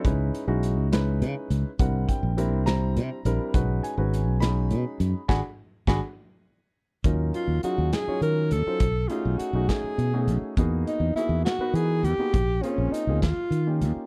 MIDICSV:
0, 0, Header, 1, 6, 480
1, 0, Start_track
1, 0, Tempo, 585938
1, 34, Time_signature, 6, 3, 24, 8
1, 11521, End_track
2, 0, Start_track
2, 0, Title_t, "Alto saxophone"
2, 0, Program_c, 0, 65
2, 6023, Note_on_c, 0, 65, 68
2, 6243, Note_off_c, 0, 65, 0
2, 6254, Note_on_c, 0, 66, 78
2, 6503, Note_on_c, 0, 68, 89
2, 6516, Note_off_c, 0, 66, 0
2, 6734, Note_off_c, 0, 68, 0
2, 6739, Note_on_c, 0, 70, 99
2, 6980, Note_on_c, 0, 69, 107
2, 6992, Note_off_c, 0, 70, 0
2, 7441, Note_on_c, 0, 65, 81
2, 7454, Note_off_c, 0, 69, 0
2, 7683, Note_on_c, 0, 66, 78
2, 7695, Note_off_c, 0, 65, 0
2, 7934, Note_on_c, 0, 68, 85
2, 7947, Note_off_c, 0, 66, 0
2, 8479, Note_off_c, 0, 68, 0
2, 8908, Note_on_c, 0, 63, 78
2, 9131, Note_off_c, 0, 63, 0
2, 9140, Note_on_c, 0, 64, 89
2, 9367, Note_off_c, 0, 64, 0
2, 9380, Note_on_c, 0, 66, 96
2, 9626, Note_on_c, 0, 68, 99
2, 9638, Note_off_c, 0, 66, 0
2, 9863, Note_on_c, 0, 67, 98
2, 9875, Note_off_c, 0, 68, 0
2, 10342, Note_on_c, 0, 61, 82
2, 10354, Note_off_c, 0, 67, 0
2, 10590, Note_on_c, 0, 63, 84
2, 10603, Note_off_c, 0, 61, 0
2, 10825, Note_off_c, 0, 63, 0
2, 10829, Note_on_c, 0, 65, 83
2, 11343, Note_off_c, 0, 65, 0
2, 11521, End_track
3, 0, Start_track
3, 0, Title_t, "Grand piano"
3, 0, Program_c, 1, 0
3, 31, Note_on_c, 1, 56, 75
3, 36, Note_on_c, 1, 61, 72
3, 39, Note_on_c, 1, 71, 78
3, 40, Note_on_c, 1, 63, 68
3, 40, Note_on_c, 1, 64, 74
3, 346, Note_off_c, 1, 56, 0
3, 348, Note_off_c, 1, 61, 0
3, 350, Note_off_c, 1, 63, 0
3, 350, Note_off_c, 1, 71, 0
3, 351, Note_off_c, 1, 64, 0
3, 389, Note_on_c, 1, 56, 85
3, 391, Note_on_c, 1, 61, 68
3, 393, Note_on_c, 1, 63, 66
3, 393, Note_on_c, 1, 64, 72
3, 394, Note_on_c, 1, 66, 86
3, 704, Note_off_c, 1, 56, 0
3, 705, Note_off_c, 1, 61, 0
3, 706, Note_off_c, 1, 63, 0
3, 706, Note_off_c, 1, 64, 0
3, 707, Note_off_c, 1, 66, 0
3, 753, Note_on_c, 1, 56, 78
3, 754, Note_on_c, 1, 61, 67
3, 754, Note_on_c, 1, 63, 64
3, 758, Note_on_c, 1, 64, 64
3, 761, Note_on_c, 1, 71, 86
3, 1379, Note_off_c, 1, 56, 0
3, 1379, Note_off_c, 1, 61, 0
3, 1379, Note_off_c, 1, 63, 0
3, 1381, Note_off_c, 1, 64, 0
3, 1383, Note_off_c, 1, 71, 0
3, 1466, Note_on_c, 1, 55, 64
3, 1469, Note_on_c, 1, 60, 59
3, 1469, Note_on_c, 1, 62, 63
3, 1472, Note_on_c, 1, 78, 83
3, 1474, Note_on_c, 1, 64, 61
3, 1476, Note_on_c, 1, 70, 68
3, 1701, Note_on_c, 1, 79, 83
3, 1702, Note_off_c, 1, 78, 0
3, 1885, Note_off_c, 1, 55, 0
3, 1886, Note_off_c, 1, 60, 0
3, 1886, Note_off_c, 1, 62, 0
3, 1889, Note_off_c, 1, 64, 0
3, 1890, Note_off_c, 1, 70, 0
3, 1943, Note_on_c, 1, 55, 73
3, 1943, Note_on_c, 1, 60, 74
3, 1947, Note_on_c, 1, 62, 73
3, 1948, Note_on_c, 1, 64, 80
3, 1950, Note_on_c, 1, 70, 82
3, 2149, Note_off_c, 1, 79, 0
3, 2154, Note_off_c, 1, 55, 0
3, 2154, Note_off_c, 1, 60, 0
3, 2155, Note_off_c, 1, 62, 0
3, 2156, Note_off_c, 1, 64, 0
3, 2157, Note_off_c, 1, 70, 0
3, 2175, Note_on_c, 1, 55, 73
3, 2176, Note_on_c, 1, 60, 65
3, 2176, Note_on_c, 1, 64, 63
3, 2177, Note_on_c, 1, 62, 59
3, 2180, Note_on_c, 1, 82, 112
3, 2183, Note_on_c, 1, 72, 72
3, 2598, Note_off_c, 1, 55, 0
3, 2598, Note_off_c, 1, 60, 0
3, 2599, Note_off_c, 1, 62, 0
3, 2599, Note_off_c, 1, 64, 0
3, 2602, Note_off_c, 1, 72, 0
3, 2665, Note_on_c, 1, 55, 83
3, 2667, Note_on_c, 1, 60, 62
3, 2669, Note_on_c, 1, 62, 68
3, 2671, Note_on_c, 1, 64, 68
3, 2672, Note_on_c, 1, 70, 90
3, 2867, Note_off_c, 1, 82, 0
3, 2873, Note_off_c, 1, 55, 0
3, 2874, Note_off_c, 1, 60, 0
3, 2875, Note_off_c, 1, 62, 0
3, 2876, Note_off_c, 1, 64, 0
3, 2876, Note_off_c, 1, 70, 0
3, 2898, Note_on_c, 1, 56, 71
3, 2898, Note_on_c, 1, 61, 62
3, 2902, Note_on_c, 1, 63, 65
3, 2903, Note_on_c, 1, 78, 75
3, 2904, Note_on_c, 1, 66, 60
3, 2905, Note_on_c, 1, 71, 78
3, 3135, Note_off_c, 1, 78, 0
3, 3139, Note_on_c, 1, 80, 80
3, 3214, Note_off_c, 1, 56, 0
3, 3214, Note_off_c, 1, 61, 0
3, 3216, Note_off_c, 1, 63, 0
3, 3217, Note_off_c, 1, 66, 0
3, 3217, Note_off_c, 1, 71, 0
3, 3254, Note_on_c, 1, 61, 60
3, 3255, Note_on_c, 1, 56, 66
3, 3259, Note_on_c, 1, 63, 60
3, 3260, Note_on_c, 1, 66, 64
3, 3263, Note_on_c, 1, 71, 75
3, 3571, Note_off_c, 1, 61, 0
3, 3572, Note_off_c, 1, 56, 0
3, 3574, Note_off_c, 1, 63, 0
3, 3574, Note_off_c, 1, 66, 0
3, 3576, Note_off_c, 1, 71, 0
3, 3586, Note_off_c, 1, 80, 0
3, 3608, Note_on_c, 1, 83, 106
3, 3611, Note_on_c, 1, 56, 67
3, 3612, Note_on_c, 1, 61, 62
3, 3613, Note_on_c, 1, 66, 59
3, 3614, Note_on_c, 1, 63, 59
3, 3618, Note_on_c, 1, 68, 66
3, 4243, Note_off_c, 1, 56, 0
3, 4244, Note_off_c, 1, 61, 0
3, 4244, Note_off_c, 1, 66, 0
3, 4245, Note_off_c, 1, 63, 0
3, 4247, Note_off_c, 1, 68, 0
3, 4299, Note_off_c, 1, 83, 0
3, 4329, Note_on_c, 1, 80, 97
3, 4330, Note_on_c, 1, 62, 90
3, 4331, Note_on_c, 1, 66, 89
3, 4332, Note_on_c, 1, 78, 90
3, 4333, Note_on_c, 1, 68, 88
3, 4333, Note_on_c, 1, 83, 95
3, 4409, Note_off_c, 1, 80, 0
3, 4410, Note_off_c, 1, 62, 0
3, 4410, Note_off_c, 1, 66, 0
3, 4411, Note_off_c, 1, 78, 0
3, 4411, Note_off_c, 1, 83, 0
3, 4412, Note_off_c, 1, 68, 0
3, 4812, Note_on_c, 1, 78, 100
3, 4814, Note_on_c, 1, 62, 91
3, 4814, Note_on_c, 1, 83, 96
3, 4816, Note_on_c, 1, 80, 101
3, 4817, Note_on_c, 1, 66, 101
3, 4817, Note_on_c, 1, 68, 97
3, 4891, Note_off_c, 1, 78, 0
3, 4892, Note_off_c, 1, 62, 0
3, 4892, Note_off_c, 1, 83, 0
3, 4893, Note_off_c, 1, 80, 0
3, 4894, Note_off_c, 1, 66, 0
3, 4894, Note_off_c, 1, 68, 0
3, 5771, Note_on_c, 1, 54, 65
3, 5774, Note_on_c, 1, 61, 65
3, 5776, Note_on_c, 1, 63, 66
3, 5778, Note_on_c, 1, 70, 68
3, 5779, Note_on_c, 1, 65, 59
3, 6194, Note_off_c, 1, 54, 0
3, 6195, Note_off_c, 1, 61, 0
3, 6196, Note_off_c, 1, 63, 0
3, 6197, Note_off_c, 1, 65, 0
3, 6197, Note_off_c, 1, 70, 0
3, 6254, Note_on_c, 1, 54, 69
3, 6255, Note_on_c, 1, 61, 62
3, 6259, Note_on_c, 1, 63, 65
3, 6260, Note_on_c, 1, 65, 63
3, 6260, Note_on_c, 1, 68, 70
3, 6571, Note_off_c, 1, 54, 0
3, 6571, Note_off_c, 1, 61, 0
3, 6573, Note_off_c, 1, 63, 0
3, 6574, Note_off_c, 1, 65, 0
3, 6574, Note_off_c, 1, 68, 0
3, 6615, Note_on_c, 1, 54, 69
3, 6618, Note_on_c, 1, 61, 64
3, 6618, Note_on_c, 1, 63, 60
3, 6623, Note_on_c, 1, 65, 64
3, 6625, Note_on_c, 1, 73, 85
3, 7037, Note_off_c, 1, 54, 0
3, 7038, Note_off_c, 1, 61, 0
3, 7038, Note_off_c, 1, 63, 0
3, 7041, Note_off_c, 1, 65, 0
3, 7042, Note_off_c, 1, 73, 0
3, 7097, Note_on_c, 1, 54, 72
3, 7099, Note_on_c, 1, 61, 54
3, 7103, Note_on_c, 1, 63, 56
3, 7104, Note_on_c, 1, 65, 61
3, 7108, Note_on_c, 1, 72, 71
3, 7218, Note_off_c, 1, 54, 0
3, 7219, Note_off_c, 1, 61, 0
3, 7221, Note_off_c, 1, 63, 0
3, 7221, Note_off_c, 1, 65, 0
3, 7223, Note_off_c, 1, 72, 0
3, 7451, Note_on_c, 1, 57, 65
3, 7453, Note_on_c, 1, 61, 60
3, 7458, Note_on_c, 1, 63, 67
3, 7458, Note_on_c, 1, 66, 66
3, 7460, Note_on_c, 1, 68, 83
3, 7771, Note_off_c, 1, 57, 0
3, 7771, Note_off_c, 1, 61, 0
3, 7774, Note_off_c, 1, 63, 0
3, 7774, Note_off_c, 1, 66, 0
3, 7775, Note_off_c, 1, 68, 0
3, 7814, Note_on_c, 1, 61, 60
3, 7818, Note_on_c, 1, 57, 61
3, 7821, Note_on_c, 1, 63, 59
3, 7821, Note_on_c, 1, 66, 66
3, 7824, Note_on_c, 1, 68, 65
3, 8238, Note_off_c, 1, 61, 0
3, 8240, Note_off_c, 1, 57, 0
3, 8242, Note_off_c, 1, 63, 0
3, 8242, Note_off_c, 1, 66, 0
3, 8243, Note_off_c, 1, 68, 0
3, 8302, Note_on_c, 1, 57, 63
3, 8304, Note_on_c, 1, 61, 63
3, 8304, Note_on_c, 1, 63, 53
3, 8305, Note_on_c, 1, 66, 66
3, 8310, Note_on_c, 1, 68, 72
3, 8618, Note_off_c, 1, 57, 0
3, 8619, Note_off_c, 1, 61, 0
3, 8619, Note_off_c, 1, 63, 0
3, 8620, Note_off_c, 1, 66, 0
3, 8622, Note_off_c, 1, 68, 0
3, 8667, Note_on_c, 1, 58, 78
3, 8668, Note_on_c, 1, 59, 73
3, 8671, Note_on_c, 1, 63, 74
3, 8672, Note_on_c, 1, 66, 66
3, 8675, Note_on_c, 1, 68, 80
3, 9087, Note_off_c, 1, 58, 0
3, 9087, Note_off_c, 1, 59, 0
3, 9089, Note_off_c, 1, 63, 0
3, 9089, Note_off_c, 1, 66, 0
3, 9091, Note_off_c, 1, 68, 0
3, 9143, Note_on_c, 1, 58, 71
3, 9147, Note_on_c, 1, 59, 60
3, 9148, Note_on_c, 1, 63, 62
3, 9152, Note_on_c, 1, 66, 66
3, 9154, Note_on_c, 1, 68, 78
3, 9460, Note_off_c, 1, 58, 0
3, 9463, Note_off_c, 1, 59, 0
3, 9463, Note_off_c, 1, 63, 0
3, 9465, Note_off_c, 1, 66, 0
3, 9466, Note_off_c, 1, 68, 0
3, 9500, Note_on_c, 1, 70, 73
3, 9506, Note_on_c, 1, 59, 65
3, 9508, Note_on_c, 1, 63, 63
3, 9509, Note_on_c, 1, 71, 81
3, 9511, Note_on_c, 1, 66, 75
3, 9926, Note_off_c, 1, 70, 0
3, 9929, Note_off_c, 1, 59, 0
3, 9930, Note_off_c, 1, 63, 0
3, 9930, Note_off_c, 1, 71, 0
3, 9931, Note_off_c, 1, 66, 0
3, 9986, Note_on_c, 1, 58, 62
3, 9986, Note_on_c, 1, 59, 55
3, 9986, Note_on_c, 1, 63, 57
3, 9989, Note_on_c, 1, 66, 69
3, 9994, Note_on_c, 1, 68, 71
3, 10109, Note_off_c, 1, 58, 0
3, 10109, Note_off_c, 1, 59, 0
3, 10109, Note_off_c, 1, 63, 0
3, 10110, Note_off_c, 1, 66, 0
3, 10112, Note_off_c, 1, 68, 0
3, 10345, Note_on_c, 1, 58, 67
3, 10348, Note_on_c, 1, 60, 70
3, 10352, Note_on_c, 1, 61, 66
3, 10354, Note_on_c, 1, 68, 77
3, 10356, Note_on_c, 1, 65, 73
3, 10665, Note_off_c, 1, 58, 0
3, 10667, Note_off_c, 1, 60, 0
3, 10668, Note_off_c, 1, 61, 0
3, 10670, Note_off_c, 1, 68, 0
3, 10671, Note_off_c, 1, 65, 0
3, 10719, Note_on_c, 1, 58, 64
3, 10719, Note_on_c, 1, 60, 61
3, 10720, Note_on_c, 1, 61, 59
3, 10721, Note_on_c, 1, 65, 57
3, 10725, Note_on_c, 1, 68, 75
3, 10837, Note_off_c, 1, 58, 0
3, 10837, Note_off_c, 1, 60, 0
3, 10838, Note_off_c, 1, 61, 0
3, 10838, Note_off_c, 1, 65, 0
3, 10840, Note_off_c, 1, 68, 0
3, 11199, Note_on_c, 1, 58, 62
3, 11200, Note_on_c, 1, 63, 60
3, 11202, Note_on_c, 1, 61, 58
3, 11205, Note_on_c, 1, 65, 57
3, 11209, Note_on_c, 1, 67, 73
3, 11515, Note_off_c, 1, 58, 0
3, 11515, Note_off_c, 1, 63, 0
3, 11516, Note_off_c, 1, 61, 0
3, 11518, Note_off_c, 1, 65, 0
3, 11520, Note_off_c, 1, 67, 0
3, 11521, End_track
4, 0, Start_track
4, 0, Title_t, "Fingered electric bass"
4, 0, Program_c, 2, 33
4, 40, Note_on_c, 2, 37, 72
4, 245, Note_off_c, 2, 37, 0
4, 390, Note_on_c, 2, 35, 80
4, 635, Note_off_c, 2, 35, 0
4, 635, Note_on_c, 2, 37, 84
4, 997, Note_on_c, 2, 49, 95
4, 1009, Note_off_c, 2, 37, 0
4, 1097, Note_off_c, 2, 49, 0
4, 1232, Note_on_c, 2, 37, 99
4, 1334, Note_off_c, 2, 37, 0
4, 1470, Note_on_c, 2, 36, 82
4, 1676, Note_off_c, 2, 36, 0
4, 1825, Note_on_c, 2, 34, 82
4, 2067, Note_off_c, 2, 34, 0
4, 2067, Note_on_c, 2, 36, 82
4, 2430, Note_on_c, 2, 48, 94
4, 2442, Note_off_c, 2, 36, 0
4, 2531, Note_off_c, 2, 48, 0
4, 2663, Note_on_c, 2, 34, 104
4, 2767, Note_off_c, 2, 34, 0
4, 2898, Note_on_c, 2, 35, 88
4, 3107, Note_off_c, 2, 35, 0
4, 3257, Note_on_c, 2, 32, 81
4, 3499, Note_off_c, 2, 32, 0
4, 3499, Note_on_c, 2, 35, 81
4, 3859, Note_on_c, 2, 47, 91
4, 3871, Note_off_c, 2, 35, 0
4, 3963, Note_off_c, 2, 47, 0
4, 4095, Note_on_c, 2, 42, 105
4, 4201, Note_off_c, 2, 42, 0
4, 4332, Note_on_c, 2, 32, 81
4, 4424, Note_off_c, 2, 32, 0
4, 4812, Note_on_c, 2, 32, 88
4, 4904, Note_off_c, 2, 32, 0
4, 5771, Note_on_c, 2, 39, 83
4, 5982, Note_off_c, 2, 39, 0
4, 6124, Note_on_c, 2, 39, 76
4, 6234, Note_off_c, 2, 39, 0
4, 6374, Note_on_c, 2, 39, 81
4, 6479, Note_off_c, 2, 39, 0
4, 6728, Note_on_c, 2, 51, 80
4, 6975, Note_on_c, 2, 39, 91
4, 6987, Note_off_c, 2, 51, 0
4, 7081, Note_off_c, 2, 39, 0
4, 7211, Note_on_c, 2, 35, 68
4, 7423, Note_off_c, 2, 35, 0
4, 7580, Note_on_c, 2, 35, 80
4, 7684, Note_off_c, 2, 35, 0
4, 7808, Note_on_c, 2, 35, 82
4, 7918, Note_off_c, 2, 35, 0
4, 8176, Note_on_c, 2, 47, 83
4, 8416, Note_on_c, 2, 35, 93
4, 8428, Note_off_c, 2, 47, 0
4, 8523, Note_off_c, 2, 35, 0
4, 8662, Note_on_c, 2, 40, 71
4, 8872, Note_off_c, 2, 40, 0
4, 9010, Note_on_c, 2, 40, 74
4, 9121, Note_off_c, 2, 40, 0
4, 9249, Note_on_c, 2, 40, 84
4, 9361, Note_off_c, 2, 40, 0
4, 9613, Note_on_c, 2, 52, 95
4, 9854, Note_on_c, 2, 40, 98
4, 9866, Note_off_c, 2, 52, 0
4, 9965, Note_off_c, 2, 40, 0
4, 10109, Note_on_c, 2, 34, 77
4, 10319, Note_off_c, 2, 34, 0
4, 10469, Note_on_c, 2, 34, 75
4, 10575, Note_off_c, 2, 34, 0
4, 10707, Note_on_c, 2, 38, 75
4, 10815, Note_off_c, 2, 38, 0
4, 10835, Note_on_c, 2, 39, 101
4, 10939, Note_off_c, 2, 39, 0
4, 11064, Note_on_c, 2, 51, 89
4, 11314, Note_on_c, 2, 39, 96
4, 11326, Note_off_c, 2, 51, 0
4, 11420, Note_off_c, 2, 39, 0
4, 11521, End_track
5, 0, Start_track
5, 0, Title_t, "Muted fingered electric bass strokes"
5, 6255, Note_on_c, 9, 29, 30
5, 6337, Note_off_c, 9, 29, 0
5, 6616, Note_on_c, 9, 29, 32
5, 6698, Note_off_c, 9, 29, 0
5, 7098, Note_on_c, 9, 29, 35
5, 7180, Note_off_c, 9, 29, 0
5, 8060, Note_on_c, 9, 29, 31
5, 8142, Note_off_c, 9, 29, 0
5, 9135, Note_on_c, 9, 29, 33
5, 9217, Note_off_c, 9, 29, 0
5, 9492, Note_on_c, 9, 29, 35
5, 9574, Note_off_c, 9, 29, 0
5, 9974, Note_on_c, 9, 29, 31
5, 10056, Note_off_c, 9, 29, 0
5, 10950, Note_on_c, 9, 29, 35
5, 11032, Note_off_c, 9, 29, 0
5, 11439, Note_on_c, 9, 29, 36
5, 11521, Note_off_c, 9, 29, 0
5, 11521, End_track
6, 0, Start_track
6, 0, Title_t, "Drums"
6, 38, Note_on_c, 9, 36, 98
6, 43, Note_on_c, 9, 42, 80
6, 120, Note_off_c, 9, 36, 0
6, 125, Note_off_c, 9, 42, 0
6, 283, Note_on_c, 9, 42, 58
6, 365, Note_off_c, 9, 42, 0
6, 516, Note_on_c, 9, 42, 57
6, 598, Note_off_c, 9, 42, 0
6, 759, Note_on_c, 9, 42, 83
6, 764, Note_on_c, 9, 38, 106
6, 841, Note_off_c, 9, 42, 0
6, 846, Note_off_c, 9, 38, 0
6, 998, Note_on_c, 9, 42, 59
6, 1080, Note_off_c, 9, 42, 0
6, 1234, Note_on_c, 9, 42, 60
6, 1316, Note_off_c, 9, 42, 0
6, 1470, Note_on_c, 9, 36, 106
6, 1470, Note_on_c, 9, 42, 74
6, 1552, Note_off_c, 9, 36, 0
6, 1552, Note_off_c, 9, 42, 0
6, 1709, Note_on_c, 9, 36, 75
6, 1713, Note_on_c, 9, 42, 53
6, 1791, Note_off_c, 9, 36, 0
6, 1795, Note_off_c, 9, 42, 0
6, 1950, Note_on_c, 9, 42, 65
6, 2032, Note_off_c, 9, 42, 0
6, 2187, Note_on_c, 9, 42, 74
6, 2192, Note_on_c, 9, 38, 100
6, 2268, Note_off_c, 9, 42, 0
6, 2274, Note_off_c, 9, 38, 0
6, 2430, Note_on_c, 9, 42, 63
6, 2512, Note_off_c, 9, 42, 0
6, 2667, Note_on_c, 9, 42, 65
6, 2749, Note_off_c, 9, 42, 0
6, 2901, Note_on_c, 9, 36, 109
6, 2906, Note_on_c, 9, 42, 93
6, 2983, Note_off_c, 9, 36, 0
6, 2988, Note_off_c, 9, 42, 0
6, 3148, Note_on_c, 9, 42, 67
6, 3230, Note_off_c, 9, 42, 0
6, 3388, Note_on_c, 9, 42, 63
6, 3470, Note_off_c, 9, 42, 0
6, 3622, Note_on_c, 9, 42, 82
6, 3628, Note_on_c, 9, 38, 105
6, 3704, Note_off_c, 9, 42, 0
6, 3710, Note_off_c, 9, 38, 0
6, 3854, Note_on_c, 9, 42, 64
6, 3936, Note_off_c, 9, 42, 0
6, 4097, Note_on_c, 9, 42, 64
6, 4179, Note_off_c, 9, 42, 0
6, 4333, Note_on_c, 9, 36, 92
6, 4342, Note_on_c, 9, 38, 91
6, 4415, Note_off_c, 9, 36, 0
6, 4424, Note_off_c, 9, 38, 0
6, 4811, Note_on_c, 9, 36, 95
6, 4818, Note_on_c, 9, 38, 101
6, 4893, Note_off_c, 9, 36, 0
6, 4900, Note_off_c, 9, 38, 0
6, 5770, Note_on_c, 9, 36, 99
6, 5772, Note_on_c, 9, 42, 75
6, 5852, Note_off_c, 9, 36, 0
6, 5854, Note_off_c, 9, 42, 0
6, 6015, Note_on_c, 9, 42, 56
6, 6097, Note_off_c, 9, 42, 0
6, 6251, Note_on_c, 9, 42, 57
6, 6333, Note_off_c, 9, 42, 0
6, 6493, Note_on_c, 9, 42, 70
6, 6499, Note_on_c, 9, 38, 97
6, 6575, Note_off_c, 9, 42, 0
6, 6581, Note_off_c, 9, 38, 0
6, 6735, Note_on_c, 9, 42, 57
6, 6817, Note_off_c, 9, 42, 0
6, 6970, Note_on_c, 9, 42, 56
6, 7052, Note_off_c, 9, 42, 0
6, 7209, Note_on_c, 9, 42, 80
6, 7212, Note_on_c, 9, 36, 97
6, 7291, Note_off_c, 9, 42, 0
6, 7294, Note_off_c, 9, 36, 0
6, 7451, Note_on_c, 9, 42, 56
6, 7533, Note_off_c, 9, 42, 0
6, 7696, Note_on_c, 9, 42, 54
6, 7778, Note_off_c, 9, 42, 0
6, 7937, Note_on_c, 9, 36, 71
6, 7940, Note_on_c, 9, 42, 70
6, 7945, Note_on_c, 9, 38, 89
6, 8019, Note_off_c, 9, 36, 0
6, 8022, Note_off_c, 9, 42, 0
6, 8027, Note_off_c, 9, 38, 0
6, 8182, Note_on_c, 9, 42, 53
6, 8264, Note_off_c, 9, 42, 0
6, 8420, Note_on_c, 9, 42, 54
6, 8502, Note_off_c, 9, 42, 0
6, 8660, Note_on_c, 9, 36, 101
6, 8664, Note_on_c, 9, 42, 74
6, 8742, Note_off_c, 9, 36, 0
6, 8745, Note_off_c, 9, 42, 0
6, 8908, Note_on_c, 9, 42, 49
6, 8990, Note_off_c, 9, 42, 0
6, 9152, Note_on_c, 9, 42, 55
6, 9234, Note_off_c, 9, 42, 0
6, 9389, Note_on_c, 9, 42, 73
6, 9394, Note_on_c, 9, 38, 96
6, 9471, Note_off_c, 9, 42, 0
6, 9476, Note_off_c, 9, 38, 0
6, 9628, Note_on_c, 9, 42, 61
6, 9710, Note_off_c, 9, 42, 0
6, 9867, Note_on_c, 9, 42, 57
6, 9949, Note_off_c, 9, 42, 0
6, 10107, Note_on_c, 9, 36, 100
6, 10107, Note_on_c, 9, 42, 75
6, 10189, Note_off_c, 9, 36, 0
6, 10189, Note_off_c, 9, 42, 0
6, 10350, Note_on_c, 9, 42, 59
6, 10432, Note_off_c, 9, 42, 0
6, 10599, Note_on_c, 9, 42, 64
6, 10681, Note_off_c, 9, 42, 0
6, 10832, Note_on_c, 9, 36, 65
6, 10835, Note_on_c, 9, 42, 75
6, 10841, Note_on_c, 9, 38, 102
6, 10914, Note_off_c, 9, 36, 0
6, 10917, Note_off_c, 9, 42, 0
6, 10923, Note_off_c, 9, 38, 0
6, 11076, Note_on_c, 9, 42, 60
6, 11158, Note_off_c, 9, 42, 0
6, 11318, Note_on_c, 9, 42, 62
6, 11400, Note_off_c, 9, 42, 0
6, 11521, End_track
0, 0, End_of_file